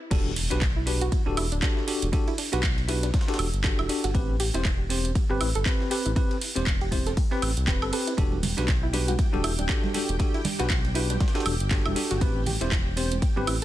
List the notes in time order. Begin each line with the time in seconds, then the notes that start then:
0.11 E1 D4 F#4 G4 A4, kick, closed hi-hat, crash, ride, impact
0.36 open hi-hat, ride
0.50 B1 D4 F#4 G4 B4, snare, closed hi-hat
0.62 kick, snare, clap, closed hi-hat, ride
0.76 E4
0.86 D4 F#4 G4 B4, open hi-hat, ride
1.01 F#4, closed hi-hat
1.12 kick, closed hi-hat, ride
1.26 D1 D4 F#4 G4 A4
1.37 E1 E4, open hi-hat, ride, high woodblock
1.52 D1 D4, closed hi-hat
1.62 D4 F#4 G4 A4, kick, snare, clap, closed hi-hat, ride
1.77 snare
1.87 D4 F#4 G4 A4, open hi-hat, ride
2.02 E1, closed hi-hat
2.12 D4 F#4 G4 A4, kick, closed hi-hat, ride
2.28 E4, ride
2.38 D4, open hi-hat, ride
2.52 B1 D4 F#4 G4 B4, snare, closed hi-hat
2.63 kick, snare, clap, closed hi-hat, ride
2.78 ride
2.88 D4 E4 F#4 G4 B4, open hi-hat, ride
3.03 D4, snare, closed hi-hat
3.14 D4, kick, snare, closed hi-hat, ride
3.21 snare, ride
3.28 D4 F#4 G4 A4, snare, ride
3.34 snare, ride
3.39 E1, open hi-hat, ride, high woodblock
3.54 G1, closed hi-hat
3.64 D4 F#4 G4 A4, kick, snare, clap, closed hi-hat, ride
3.79 E1 E4, ride, high woodblock
3.89 D4 F#4 G4 A4, open hi-hat, ride
4.04 G1 F#4, closed hi-hat, ride
4.14 A1 C4 G4 B4, kick, closed hi-hat, ride
4.40 G4, open hi-hat, ride
4.54 E1 C4 E4 G4 C5, snare, closed hi-hat
4.65 E4, kick, snare, clap, closed hi-hat, ride
4.90 C4 G4 C5, open hi-hat, ride
5.05 closed hi-hat
5.15 kick, closed hi-hat, ride
5.30 G1 C4 G4 B4
5.41 A1 E4, open hi-hat, ride, high woodblock
5.55 G1 A4, closed hi-hat
5.65 C4 G4 B4, kick, snare, clap, closed hi-hat, ride
5.81 snare
5.90 C4 G4 B4, open hi-hat, ride
6.06 A1 E4, closed hi-hat
6.16 C4 E4 G4 B4, kick, closed hi-hat, ride
6.31 ride
6.41 open hi-hat, ride
6.56 E1 C4 G4 C5, snare, closed hi-hat
6.67 kick, snare, clap, closed hi-hat, ride
6.81 G4, ride
6.91 C4 E4 G4 C5, kick, open hi-hat, ride
7.07 A4, snare, closed hi-hat
7.17 kick, closed hi-hat, open hi-hat
7.31 C4 G4 B4, snare
7.42 A1 G5, open hi-hat, ride, high woodblock
7.57 C2, closed hi-hat
7.67 E1 C4 G4 B4 G5, kick, snare, clap, closed hi-hat, ride
7.82 G1 A4, ride, high woodblock
7.92 C4 G4 A4 B4, open hi-hat, ride
8.07 E4, closed hi-hat, ride
8.17 E1 D4 F#4 G4 A4 G5, kick, closed hi-hat, ride
8.32 muted conga
8.43 open hi-hat, ride, high conga, low conga
8.57 B1 D4 F#4 G4 B4, snare, closed hi-hat
8.68 kick, snare, clap, closed hi-hat, ride
8.83 E4
8.93 D4 F#4 G4 B4, open hi-hat, ride, muted conga
9.08 F#4, closed hi-hat, high conga
9.19 kick, closed hi-hat, ride
9.33 D1 D4 F#4 G4 A4, muted conga
9.44 E1 E4, open hi-hat, ride, high woodblock
9.59 D1 D4, closed hi-hat, muted conga
9.69 D4 F#4 G4 A4, kick, snare, clap, closed hi-hat, ride
9.84 snare, high conga
9.94 D4 F#4 G4 A4, open hi-hat, ride, muted conga
10.09 E1, closed hi-hat
10.19 D4 F#4 G4 A4, kick, closed hi-hat, ride, muted conga
10.34 E4, ride
10.44 D4, open hi-hat, ride, high conga, low conga
10.59 B1 D4 F#4 G4 B4, snare, closed hi-hat, muted conga
10.70 kick, snare, clap, closed hi-hat, ride
10.85 ride, muted conga
10.95 D4 E4 F#4 G4 B4, open hi-hat, ride
11.10 D4, snare, closed hi-hat, high conga
11.20 D4, kick, snare, closed hi-hat, ride, muted conga
11.28 snare, ride
11.35 D4 F#4 G4 A4, snare, ride
11.40 snare, ride
11.46 E1, open hi-hat, ride, muted conga, high woodblock
11.60 G1, closed hi-hat
11.70 D4 F#4 G4 A4, kick, snare, clap, closed hi-hat, ride
11.86 E1 E4, ride, muted conga, high conga, high woodblock
11.96 D4 F#4 G4 A4, open hi-hat, ride
12.11 G1 F#4, closed hi-hat, ride, muted conga
12.21 A1 C4 G4 B4, kick, closed hi-hat, ride
12.46 G4, open hi-hat, ride, muted conga, high conga, low conga
12.61 E1 C4 E4 G4 C5, snare, closed hi-hat
12.72 E4, kick, snare, clap, closed hi-hat, ride, muted conga
12.96 C4 G4 C5, open hi-hat, ride
13.12 closed hi-hat, muted conga, high conga
13.22 kick, closed hi-hat, ride
13.36 G1 C4 G4 B4, muted conga
13.47 A1 E4, open hi-hat, ride, high woodblock